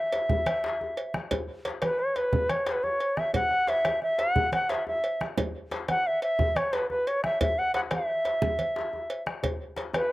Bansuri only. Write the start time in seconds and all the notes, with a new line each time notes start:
Already playing: E5
1.82 B4
1.99 C#5
2.16 B4
2.50 C#5
2.67 B4
2.83 C#5
3.18 E5
3.35 F#5
3.69 E5
4.03 E5
4.19 F#5
4.54 F#5
4.70 E5
4.88 E5
5.90 F#5
6.07 E5
6.23 E5
6.57 C#5
6.73 B4
6.90 B4
7.07 C#5
7.24 E5
7.42 E5
7.59 F#5
7.75 F#5
7.92 E5
9.94 B4